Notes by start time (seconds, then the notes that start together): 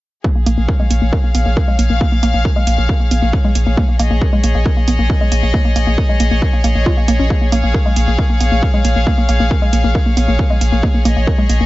0.24 A#3 G#4, kick
0.36 A#3
0.46 A#1 A#3 F5, open hi-hat
0.58 A#1 A#3
0.62 C#5
0.68 A#4, kick
0.80 G#3
0.91 A#1 A#3, open hi-hat
1.02 A#1 A#3
1.13 A#4, kick
1.24 A#3
1.35 A#1 B3, open hi-hat
1.46 A#1 A#3
1.57 A#4, kick
1.68 G#3
1.79 A#1 A#3, open hi-hat
1.90 A#1 A#3
2.01 A#3, kick
2.12 A#3
2.23 A#1 A#3, open hi-hat
2.34 A#1 A#3
2.45 A#4, kick
2.56 G#3
2.67 A#1 A#3, open hi-hat
2.78 A#1 A#3
2.89 A#4, kick
3.00 A#3
3.11 A#1 B3, open hi-hat
3.22 A#1 A#3
3.33 A#4, kick
3.45 G#3
3.55 A#1 A#3, open hi-hat
3.66 A#1 A#3
3.77 A#3, kick
3.89 A#3
3.99 A#1 A#3 D#5, open hi-hat
4.11 A#1 A#3
4.22 A#4, kick
4.33 G#3
4.44 A#1 A#3, open hi-hat
4.55 A#1 A#3
4.66 A#4, kick
4.77 A#3
4.88 A#1 B3, open hi-hat
4.99 A#1 A#3
5.10 A#4, kick
5.21 G#3
5.32 A#1 A#3, open hi-hat
5.43 A#1 A#3
5.54 A#3, kick
5.65 A#3
5.76 A#1 A#3, open hi-hat
5.87 A#1 A#3
5.98 A#4, kick
6.09 G#3
6.20 A#1 A#3, open hi-hat
6.31 A#1 A#3
6.42 A#4, kick
6.53 A#3
6.64 A#1 A#3, open hi-hat
6.75 A#1 A#3
6.86 F4, kick
6.97 A#3
7.08 A#1 A#3, open hi-hat
7.19 A#1 C#4
7.30 A#3, kick
7.42 A#3
7.52 A#1 A#3 F5, open hi-hat
7.64 A#1 A#3
7.74 A#4, kick
7.86 G#3
7.96 A#1 A#3, open hi-hat
8.08 A#1 A#3
8.19 A#4, kick
8.30 A#3
8.41 A#1 B3, open hi-hat
8.52 A#1 A#3
8.63 A#4, kick
8.74 G#3
8.85 A#1 A#3, open hi-hat
8.96 A#1 A#3
9.07 A#3, kick
9.18 A#3
9.29 A#1 A#3, open hi-hat
9.40 A#1 A#3
9.51 A#4, kick
9.62 G#3
9.73 A#1 A#3, open hi-hat
9.84 A#1 A#3
9.95 A#4, kick
10.06 A#3
10.17 A#1 B3, open hi-hat
10.28 A#1 A#3
10.39 A#4, kick
10.50 G#3
10.61 A#1 A#3, open hi-hat
10.72 A#1 A#3
10.83 A#3, kick
10.94 A#3
11.05 A#1 A#3 D#5, open hi-hat
11.17 A#1 A#3
11.27 A#4, kick
11.39 G#3
11.49 A#1 A#3, open hi-hat
11.61 A#1 A#3